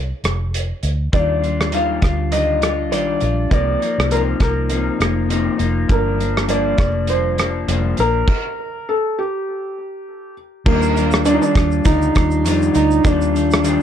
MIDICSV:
0, 0, Header, 1, 5, 480
1, 0, Start_track
1, 0, Key_signature, -3, "major"
1, 0, Tempo, 595829
1, 909, Time_signature, 4, 2, 24, 8
1, 11137, End_track
2, 0, Start_track
2, 0, Title_t, "Felt piano"
2, 0, Program_c, 0, 0
2, 916, Note_on_c, 0, 74, 89
2, 1360, Note_off_c, 0, 74, 0
2, 1406, Note_on_c, 0, 77, 88
2, 1871, Note_on_c, 0, 75, 94
2, 1891, Note_off_c, 0, 77, 0
2, 2351, Note_on_c, 0, 74, 91
2, 2364, Note_off_c, 0, 75, 0
2, 2798, Note_off_c, 0, 74, 0
2, 2841, Note_on_c, 0, 74, 91
2, 3317, Note_on_c, 0, 70, 72
2, 3329, Note_off_c, 0, 74, 0
2, 3370, Note_off_c, 0, 70, 0
2, 3562, Note_on_c, 0, 70, 71
2, 4483, Note_off_c, 0, 70, 0
2, 4766, Note_on_c, 0, 70, 83
2, 5238, Note_on_c, 0, 74, 87
2, 5251, Note_off_c, 0, 70, 0
2, 5716, Note_on_c, 0, 72, 83
2, 5728, Note_off_c, 0, 74, 0
2, 6161, Note_off_c, 0, 72, 0
2, 6444, Note_on_c, 0, 70, 104
2, 7160, Note_on_c, 0, 69, 81
2, 7179, Note_off_c, 0, 70, 0
2, 7400, Note_on_c, 0, 67, 78
2, 7402, Note_off_c, 0, 69, 0
2, 8323, Note_off_c, 0, 67, 0
2, 8592, Note_on_c, 0, 58, 94
2, 9067, Note_on_c, 0, 62, 97
2, 9085, Note_off_c, 0, 58, 0
2, 9126, Note_off_c, 0, 62, 0
2, 9134, Note_on_c, 0, 63, 81
2, 9195, Note_off_c, 0, 63, 0
2, 9199, Note_on_c, 0, 62, 98
2, 9527, Note_off_c, 0, 62, 0
2, 9550, Note_on_c, 0, 63, 115
2, 10264, Note_off_c, 0, 63, 0
2, 10276, Note_on_c, 0, 63, 102
2, 10519, Note_off_c, 0, 63, 0
2, 10520, Note_on_c, 0, 62, 103
2, 11137, Note_off_c, 0, 62, 0
2, 11137, End_track
3, 0, Start_track
3, 0, Title_t, "Clean electric guitar"
3, 0, Program_c, 1, 27
3, 908, Note_on_c, 1, 51, 62
3, 918, Note_on_c, 1, 55, 67
3, 923, Note_on_c, 1, 62, 68
3, 930, Note_on_c, 1, 65, 76
3, 1135, Note_off_c, 1, 65, 0
3, 1144, Note_on_c, 1, 65, 49
3, 1149, Note_off_c, 1, 51, 0
3, 1152, Note_off_c, 1, 62, 0
3, 1154, Note_off_c, 1, 55, 0
3, 1162, Note_on_c, 1, 62, 48
3, 1176, Note_on_c, 1, 55, 39
3, 1386, Note_on_c, 1, 51, 65
3, 1387, Note_off_c, 1, 55, 0
3, 1387, Note_off_c, 1, 65, 0
3, 1391, Note_off_c, 1, 62, 0
3, 1397, Note_on_c, 1, 55, 69
3, 1401, Note_on_c, 1, 62, 76
3, 1406, Note_on_c, 1, 65, 79
3, 1614, Note_off_c, 1, 65, 0
3, 1623, Note_on_c, 1, 65, 51
3, 1627, Note_off_c, 1, 51, 0
3, 1631, Note_off_c, 1, 62, 0
3, 1633, Note_off_c, 1, 55, 0
3, 1641, Note_on_c, 1, 62, 46
3, 1654, Note_on_c, 1, 55, 44
3, 1863, Note_on_c, 1, 51, 58
3, 1866, Note_off_c, 1, 55, 0
3, 1866, Note_off_c, 1, 65, 0
3, 1875, Note_off_c, 1, 62, 0
3, 1876, Note_on_c, 1, 55, 58
3, 1885, Note_on_c, 1, 62, 58
3, 1892, Note_on_c, 1, 65, 59
3, 2093, Note_off_c, 1, 65, 0
3, 2103, Note_on_c, 1, 65, 52
3, 2106, Note_off_c, 1, 51, 0
3, 2107, Note_off_c, 1, 62, 0
3, 2112, Note_off_c, 1, 55, 0
3, 2117, Note_on_c, 1, 62, 44
3, 2131, Note_on_c, 1, 55, 37
3, 2344, Note_off_c, 1, 55, 0
3, 2345, Note_on_c, 1, 51, 70
3, 2346, Note_off_c, 1, 65, 0
3, 2350, Note_off_c, 1, 62, 0
3, 2353, Note_on_c, 1, 55, 69
3, 2360, Note_on_c, 1, 62, 73
3, 2364, Note_on_c, 1, 65, 77
3, 2570, Note_off_c, 1, 65, 0
3, 2579, Note_on_c, 1, 65, 47
3, 2587, Note_off_c, 1, 51, 0
3, 2588, Note_off_c, 1, 62, 0
3, 2591, Note_off_c, 1, 55, 0
3, 2597, Note_on_c, 1, 62, 45
3, 2610, Note_on_c, 1, 55, 36
3, 2821, Note_on_c, 1, 48, 63
3, 2824, Note_off_c, 1, 65, 0
3, 2827, Note_off_c, 1, 55, 0
3, 2830, Note_on_c, 1, 53, 64
3, 2831, Note_off_c, 1, 62, 0
3, 2835, Note_on_c, 1, 58, 66
3, 2842, Note_on_c, 1, 63, 75
3, 3052, Note_off_c, 1, 63, 0
3, 3062, Note_on_c, 1, 63, 46
3, 3065, Note_off_c, 1, 48, 0
3, 3069, Note_off_c, 1, 53, 0
3, 3069, Note_off_c, 1, 58, 0
3, 3079, Note_on_c, 1, 58, 44
3, 3090, Note_on_c, 1, 53, 39
3, 3303, Note_off_c, 1, 53, 0
3, 3305, Note_off_c, 1, 63, 0
3, 3306, Note_on_c, 1, 48, 76
3, 3310, Note_off_c, 1, 58, 0
3, 3313, Note_on_c, 1, 53, 74
3, 3319, Note_on_c, 1, 58, 68
3, 3325, Note_on_c, 1, 63, 77
3, 3533, Note_off_c, 1, 63, 0
3, 3543, Note_on_c, 1, 63, 55
3, 3547, Note_off_c, 1, 48, 0
3, 3547, Note_off_c, 1, 58, 0
3, 3551, Note_off_c, 1, 53, 0
3, 3557, Note_on_c, 1, 58, 44
3, 3780, Note_on_c, 1, 48, 57
3, 3786, Note_off_c, 1, 63, 0
3, 3790, Note_off_c, 1, 58, 0
3, 3793, Note_on_c, 1, 53, 64
3, 3799, Note_on_c, 1, 58, 65
3, 3808, Note_on_c, 1, 63, 63
3, 4011, Note_off_c, 1, 63, 0
3, 4021, Note_on_c, 1, 63, 49
3, 4024, Note_off_c, 1, 48, 0
3, 4030, Note_off_c, 1, 58, 0
3, 4031, Note_off_c, 1, 53, 0
3, 4039, Note_on_c, 1, 58, 50
3, 4049, Note_on_c, 1, 53, 42
3, 4256, Note_off_c, 1, 53, 0
3, 4259, Note_on_c, 1, 48, 72
3, 4264, Note_off_c, 1, 58, 0
3, 4265, Note_off_c, 1, 63, 0
3, 4266, Note_on_c, 1, 53, 76
3, 4273, Note_on_c, 1, 58, 82
3, 4279, Note_on_c, 1, 63, 86
3, 4485, Note_off_c, 1, 63, 0
3, 4495, Note_on_c, 1, 63, 61
3, 4501, Note_off_c, 1, 58, 0
3, 4504, Note_off_c, 1, 48, 0
3, 4507, Note_off_c, 1, 53, 0
3, 4510, Note_on_c, 1, 58, 54
3, 4526, Note_on_c, 1, 53, 47
3, 4734, Note_off_c, 1, 53, 0
3, 4738, Note_on_c, 1, 43, 68
3, 4742, Note_off_c, 1, 58, 0
3, 4742, Note_off_c, 1, 63, 0
3, 4744, Note_on_c, 1, 53, 71
3, 4752, Note_on_c, 1, 58, 70
3, 4757, Note_on_c, 1, 62, 75
3, 4968, Note_off_c, 1, 62, 0
3, 4978, Note_on_c, 1, 62, 48
3, 4983, Note_off_c, 1, 43, 0
3, 4984, Note_off_c, 1, 58, 0
3, 4986, Note_off_c, 1, 53, 0
3, 4993, Note_on_c, 1, 58, 45
3, 5007, Note_on_c, 1, 53, 39
3, 5213, Note_off_c, 1, 53, 0
3, 5215, Note_on_c, 1, 43, 76
3, 5219, Note_off_c, 1, 58, 0
3, 5223, Note_on_c, 1, 53, 76
3, 5224, Note_off_c, 1, 62, 0
3, 5228, Note_on_c, 1, 58, 79
3, 5237, Note_on_c, 1, 62, 80
3, 5442, Note_off_c, 1, 62, 0
3, 5452, Note_on_c, 1, 62, 53
3, 5460, Note_off_c, 1, 58, 0
3, 5462, Note_off_c, 1, 43, 0
3, 5466, Note_off_c, 1, 53, 0
3, 5470, Note_on_c, 1, 58, 49
3, 5484, Note_on_c, 1, 53, 45
3, 5696, Note_on_c, 1, 43, 55
3, 5698, Note_off_c, 1, 53, 0
3, 5700, Note_off_c, 1, 62, 0
3, 5706, Note_off_c, 1, 58, 0
3, 5708, Note_on_c, 1, 53, 64
3, 5716, Note_on_c, 1, 58, 67
3, 5724, Note_on_c, 1, 62, 66
3, 5929, Note_off_c, 1, 62, 0
3, 5938, Note_on_c, 1, 62, 52
3, 5942, Note_off_c, 1, 43, 0
3, 5942, Note_off_c, 1, 58, 0
3, 5948, Note_off_c, 1, 53, 0
3, 5952, Note_on_c, 1, 58, 44
3, 5967, Note_on_c, 1, 53, 41
3, 6179, Note_off_c, 1, 53, 0
3, 6182, Note_on_c, 1, 43, 64
3, 6184, Note_off_c, 1, 62, 0
3, 6187, Note_off_c, 1, 58, 0
3, 6189, Note_on_c, 1, 53, 72
3, 6196, Note_on_c, 1, 58, 70
3, 6201, Note_on_c, 1, 62, 81
3, 6409, Note_off_c, 1, 62, 0
3, 6418, Note_on_c, 1, 62, 52
3, 6426, Note_off_c, 1, 43, 0
3, 6428, Note_off_c, 1, 58, 0
3, 6429, Note_off_c, 1, 53, 0
3, 6437, Note_on_c, 1, 58, 45
3, 6451, Note_on_c, 1, 53, 38
3, 6664, Note_off_c, 1, 62, 0
3, 6674, Note_off_c, 1, 58, 0
3, 6680, Note_off_c, 1, 53, 0
3, 8585, Note_on_c, 1, 51, 81
3, 8592, Note_on_c, 1, 55, 71
3, 8601, Note_on_c, 1, 62, 79
3, 8606, Note_on_c, 1, 65, 93
3, 8814, Note_off_c, 1, 65, 0
3, 8823, Note_on_c, 1, 65, 59
3, 8827, Note_off_c, 1, 51, 0
3, 8831, Note_off_c, 1, 55, 0
3, 8832, Note_off_c, 1, 62, 0
3, 8842, Note_on_c, 1, 62, 56
3, 8855, Note_on_c, 1, 55, 47
3, 9066, Note_off_c, 1, 55, 0
3, 9066, Note_on_c, 1, 51, 74
3, 9067, Note_off_c, 1, 65, 0
3, 9073, Note_off_c, 1, 62, 0
3, 9075, Note_on_c, 1, 55, 88
3, 9082, Note_on_c, 1, 62, 80
3, 9088, Note_on_c, 1, 65, 87
3, 9296, Note_off_c, 1, 65, 0
3, 9305, Note_on_c, 1, 65, 56
3, 9308, Note_off_c, 1, 51, 0
3, 9310, Note_off_c, 1, 62, 0
3, 9312, Note_off_c, 1, 55, 0
3, 9319, Note_on_c, 1, 62, 52
3, 9333, Note_on_c, 1, 55, 52
3, 9544, Note_on_c, 1, 51, 71
3, 9546, Note_off_c, 1, 55, 0
3, 9547, Note_off_c, 1, 65, 0
3, 9554, Note_off_c, 1, 62, 0
3, 9556, Note_on_c, 1, 55, 66
3, 9566, Note_on_c, 1, 62, 70
3, 9574, Note_on_c, 1, 65, 69
3, 9772, Note_off_c, 1, 65, 0
3, 9782, Note_on_c, 1, 65, 57
3, 9787, Note_off_c, 1, 51, 0
3, 9791, Note_off_c, 1, 62, 0
3, 9793, Note_off_c, 1, 55, 0
3, 9800, Note_on_c, 1, 62, 48
3, 9814, Note_on_c, 1, 55, 45
3, 10023, Note_off_c, 1, 55, 0
3, 10025, Note_on_c, 1, 51, 73
3, 10026, Note_off_c, 1, 65, 0
3, 10028, Note_off_c, 1, 62, 0
3, 10033, Note_on_c, 1, 55, 89
3, 10038, Note_on_c, 1, 62, 87
3, 10046, Note_on_c, 1, 65, 78
3, 10249, Note_off_c, 1, 65, 0
3, 10259, Note_on_c, 1, 65, 56
3, 10267, Note_off_c, 1, 51, 0
3, 10267, Note_off_c, 1, 62, 0
3, 10271, Note_off_c, 1, 55, 0
3, 10277, Note_on_c, 1, 62, 54
3, 10498, Note_on_c, 1, 51, 77
3, 10503, Note_off_c, 1, 62, 0
3, 10504, Note_off_c, 1, 65, 0
3, 10504, Note_on_c, 1, 55, 77
3, 10513, Note_on_c, 1, 62, 82
3, 10519, Note_on_c, 1, 65, 83
3, 10729, Note_off_c, 1, 65, 0
3, 10738, Note_on_c, 1, 65, 60
3, 10743, Note_off_c, 1, 51, 0
3, 10746, Note_off_c, 1, 55, 0
3, 10746, Note_off_c, 1, 62, 0
3, 10755, Note_on_c, 1, 62, 54
3, 10766, Note_on_c, 1, 55, 49
3, 10981, Note_off_c, 1, 55, 0
3, 10982, Note_on_c, 1, 51, 83
3, 10983, Note_off_c, 1, 65, 0
3, 10987, Note_off_c, 1, 62, 0
3, 10991, Note_on_c, 1, 55, 79
3, 10997, Note_on_c, 1, 62, 86
3, 11001, Note_on_c, 1, 65, 90
3, 11137, Note_off_c, 1, 51, 0
3, 11137, Note_off_c, 1, 55, 0
3, 11137, Note_off_c, 1, 62, 0
3, 11137, Note_off_c, 1, 65, 0
3, 11137, End_track
4, 0, Start_track
4, 0, Title_t, "Fingered electric bass"
4, 0, Program_c, 2, 33
4, 0, Note_on_c, 2, 36, 75
4, 94, Note_off_c, 2, 36, 0
4, 190, Note_on_c, 2, 29, 78
4, 574, Note_off_c, 2, 29, 0
4, 671, Note_on_c, 2, 38, 84
4, 862, Note_off_c, 2, 38, 0
4, 912, Note_on_c, 2, 39, 95
4, 1598, Note_off_c, 2, 39, 0
4, 1630, Note_on_c, 2, 38, 74
4, 2354, Note_off_c, 2, 38, 0
4, 2354, Note_on_c, 2, 34, 84
4, 2544, Note_off_c, 2, 34, 0
4, 2596, Note_on_c, 2, 34, 75
4, 2785, Note_off_c, 2, 34, 0
4, 2829, Note_on_c, 2, 36, 95
4, 3021, Note_off_c, 2, 36, 0
4, 3209, Note_on_c, 2, 36, 82
4, 3484, Note_off_c, 2, 36, 0
4, 3551, Note_on_c, 2, 36, 79
4, 3934, Note_off_c, 2, 36, 0
4, 4028, Note_on_c, 2, 29, 84
4, 4412, Note_off_c, 2, 29, 0
4, 4507, Note_on_c, 2, 29, 79
4, 4700, Note_off_c, 2, 29, 0
4, 4750, Note_on_c, 2, 31, 101
4, 5437, Note_off_c, 2, 31, 0
4, 5468, Note_on_c, 2, 29, 79
4, 6157, Note_off_c, 2, 29, 0
4, 6188, Note_on_c, 2, 29, 87
4, 6381, Note_off_c, 2, 29, 0
4, 6435, Note_on_c, 2, 34, 84
4, 6625, Note_off_c, 2, 34, 0
4, 8588, Note_on_c, 2, 39, 109
4, 9170, Note_off_c, 2, 39, 0
4, 9311, Note_on_c, 2, 39, 90
4, 9502, Note_off_c, 2, 39, 0
4, 9551, Note_on_c, 2, 38, 89
4, 9742, Note_off_c, 2, 38, 0
4, 9796, Note_on_c, 2, 39, 88
4, 10035, Note_off_c, 2, 39, 0
4, 10035, Note_on_c, 2, 41, 92
4, 10225, Note_off_c, 2, 41, 0
4, 10276, Note_on_c, 2, 38, 88
4, 10465, Note_off_c, 2, 38, 0
4, 10511, Note_on_c, 2, 39, 101
4, 11091, Note_off_c, 2, 39, 0
4, 11137, End_track
5, 0, Start_track
5, 0, Title_t, "Drums"
5, 192, Note_on_c, 9, 42, 50
5, 203, Note_on_c, 9, 37, 86
5, 273, Note_off_c, 9, 42, 0
5, 283, Note_off_c, 9, 37, 0
5, 437, Note_on_c, 9, 42, 78
5, 518, Note_off_c, 9, 42, 0
5, 667, Note_on_c, 9, 42, 45
5, 747, Note_off_c, 9, 42, 0
5, 910, Note_on_c, 9, 42, 73
5, 911, Note_on_c, 9, 36, 101
5, 990, Note_off_c, 9, 42, 0
5, 992, Note_off_c, 9, 36, 0
5, 1157, Note_on_c, 9, 42, 43
5, 1238, Note_off_c, 9, 42, 0
5, 1295, Note_on_c, 9, 37, 80
5, 1375, Note_off_c, 9, 37, 0
5, 1387, Note_on_c, 9, 42, 70
5, 1467, Note_off_c, 9, 42, 0
5, 1627, Note_on_c, 9, 42, 46
5, 1630, Note_on_c, 9, 36, 82
5, 1642, Note_on_c, 9, 37, 82
5, 1707, Note_off_c, 9, 42, 0
5, 1711, Note_off_c, 9, 36, 0
5, 1723, Note_off_c, 9, 37, 0
5, 1868, Note_on_c, 9, 42, 76
5, 1948, Note_off_c, 9, 42, 0
5, 2111, Note_on_c, 9, 42, 51
5, 2121, Note_on_c, 9, 37, 88
5, 2191, Note_off_c, 9, 42, 0
5, 2202, Note_off_c, 9, 37, 0
5, 2355, Note_on_c, 9, 42, 75
5, 2436, Note_off_c, 9, 42, 0
5, 2582, Note_on_c, 9, 42, 40
5, 2662, Note_off_c, 9, 42, 0
5, 2829, Note_on_c, 9, 42, 71
5, 2830, Note_on_c, 9, 36, 98
5, 2910, Note_off_c, 9, 36, 0
5, 2910, Note_off_c, 9, 42, 0
5, 3078, Note_on_c, 9, 42, 45
5, 3159, Note_off_c, 9, 42, 0
5, 3221, Note_on_c, 9, 37, 82
5, 3302, Note_off_c, 9, 37, 0
5, 3311, Note_on_c, 9, 42, 68
5, 3392, Note_off_c, 9, 42, 0
5, 3545, Note_on_c, 9, 42, 47
5, 3548, Note_on_c, 9, 36, 81
5, 3560, Note_on_c, 9, 37, 81
5, 3625, Note_off_c, 9, 42, 0
5, 3629, Note_off_c, 9, 36, 0
5, 3640, Note_off_c, 9, 37, 0
5, 3782, Note_on_c, 9, 42, 75
5, 3863, Note_off_c, 9, 42, 0
5, 4032, Note_on_c, 9, 42, 50
5, 4042, Note_on_c, 9, 37, 94
5, 4112, Note_off_c, 9, 42, 0
5, 4123, Note_off_c, 9, 37, 0
5, 4272, Note_on_c, 9, 42, 78
5, 4353, Note_off_c, 9, 42, 0
5, 4505, Note_on_c, 9, 42, 44
5, 4585, Note_off_c, 9, 42, 0
5, 4748, Note_on_c, 9, 36, 96
5, 4750, Note_on_c, 9, 42, 70
5, 4829, Note_off_c, 9, 36, 0
5, 4831, Note_off_c, 9, 42, 0
5, 4998, Note_on_c, 9, 42, 47
5, 5079, Note_off_c, 9, 42, 0
5, 5134, Note_on_c, 9, 37, 88
5, 5214, Note_off_c, 9, 37, 0
5, 5225, Note_on_c, 9, 42, 69
5, 5306, Note_off_c, 9, 42, 0
5, 5460, Note_on_c, 9, 42, 44
5, 5465, Note_on_c, 9, 36, 87
5, 5476, Note_on_c, 9, 37, 83
5, 5541, Note_off_c, 9, 42, 0
5, 5546, Note_off_c, 9, 36, 0
5, 5556, Note_off_c, 9, 37, 0
5, 5699, Note_on_c, 9, 42, 74
5, 5780, Note_off_c, 9, 42, 0
5, 5948, Note_on_c, 9, 42, 50
5, 5958, Note_on_c, 9, 37, 88
5, 6028, Note_off_c, 9, 42, 0
5, 6038, Note_off_c, 9, 37, 0
5, 6191, Note_on_c, 9, 42, 75
5, 6271, Note_off_c, 9, 42, 0
5, 6422, Note_on_c, 9, 42, 45
5, 6502, Note_off_c, 9, 42, 0
5, 6666, Note_on_c, 9, 49, 80
5, 6668, Note_on_c, 9, 36, 93
5, 6746, Note_off_c, 9, 49, 0
5, 6748, Note_off_c, 9, 36, 0
5, 8588, Note_on_c, 9, 49, 92
5, 8589, Note_on_c, 9, 36, 108
5, 8669, Note_off_c, 9, 36, 0
5, 8669, Note_off_c, 9, 49, 0
5, 8719, Note_on_c, 9, 82, 53
5, 8799, Note_off_c, 9, 82, 0
5, 8837, Note_on_c, 9, 42, 48
5, 8837, Note_on_c, 9, 82, 50
5, 8918, Note_off_c, 9, 42, 0
5, 8918, Note_off_c, 9, 82, 0
5, 8953, Note_on_c, 9, 82, 52
5, 8972, Note_on_c, 9, 37, 98
5, 9033, Note_off_c, 9, 82, 0
5, 9053, Note_off_c, 9, 37, 0
5, 9067, Note_on_c, 9, 42, 78
5, 9067, Note_on_c, 9, 82, 84
5, 9147, Note_off_c, 9, 42, 0
5, 9147, Note_off_c, 9, 82, 0
5, 9204, Note_on_c, 9, 82, 59
5, 9284, Note_off_c, 9, 82, 0
5, 9307, Note_on_c, 9, 42, 53
5, 9307, Note_on_c, 9, 82, 52
5, 9308, Note_on_c, 9, 36, 91
5, 9322, Note_on_c, 9, 37, 94
5, 9388, Note_off_c, 9, 42, 0
5, 9388, Note_off_c, 9, 82, 0
5, 9389, Note_off_c, 9, 36, 0
5, 9403, Note_off_c, 9, 37, 0
5, 9438, Note_on_c, 9, 82, 47
5, 9518, Note_off_c, 9, 82, 0
5, 9546, Note_on_c, 9, 42, 83
5, 9546, Note_on_c, 9, 82, 92
5, 9550, Note_on_c, 9, 36, 93
5, 9626, Note_off_c, 9, 42, 0
5, 9626, Note_off_c, 9, 82, 0
5, 9631, Note_off_c, 9, 36, 0
5, 9683, Note_on_c, 9, 82, 56
5, 9764, Note_off_c, 9, 82, 0
5, 9790, Note_on_c, 9, 42, 55
5, 9790, Note_on_c, 9, 82, 59
5, 9795, Note_on_c, 9, 36, 95
5, 9801, Note_on_c, 9, 37, 99
5, 9871, Note_off_c, 9, 42, 0
5, 9871, Note_off_c, 9, 82, 0
5, 9876, Note_off_c, 9, 36, 0
5, 9881, Note_off_c, 9, 37, 0
5, 9917, Note_on_c, 9, 82, 49
5, 9998, Note_off_c, 9, 82, 0
5, 10035, Note_on_c, 9, 42, 94
5, 10035, Note_on_c, 9, 82, 88
5, 10116, Note_off_c, 9, 42, 0
5, 10116, Note_off_c, 9, 82, 0
5, 10168, Note_on_c, 9, 82, 52
5, 10248, Note_off_c, 9, 82, 0
5, 10269, Note_on_c, 9, 42, 46
5, 10269, Note_on_c, 9, 82, 46
5, 10349, Note_off_c, 9, 42, 0
5, 10349, Note_off_c, 9, 82, 0
5, 10401, Note_on_c, 9, 82, 47
5, 10481, Note_off_c, 9, 82, 0
5, 10511, Note_on_c, 9, 36, 118
5, 10513, Note_on_c, 9, 42, 87
5, 10513, Note_on_c, 9, 82, 83
5, 10591, Note_off_c, 9, 36, 0
5, 10593, Note_off_c, 9, 42, 0
5, 10593, Note_off_c, 9, 82, 0
5, 10647, Note_on_c, 9, 82, 58
5, 10727, Note_off_c, 9, 82, 0
5, 10763, Note_on_c, 9, 42, 50
5, 10763, Note_on_c, 9, 82, 50
5, 10844, Note_off_c, 9, 42, 0
5, 10844, Note_off_c, 9, 82, 0
5, 10885, Note_on_c, 9, 82, 50
5, 10905, Note_on_c, 9, 37, 101
5, 10966, Note_off_c, 9, 82, 0
5, 10985, Note_off_c, 9, 37, 0
5, 10993, Note_on_c, 9, 42, 78
5, 10993, Note_on_c, 9, 82, 79
5, 11074, Note_off_c, 9, 42, 0
5, 11074, Note_off_c, 9, 82, 0
5, 11137, End_track
0, 0, End_of_file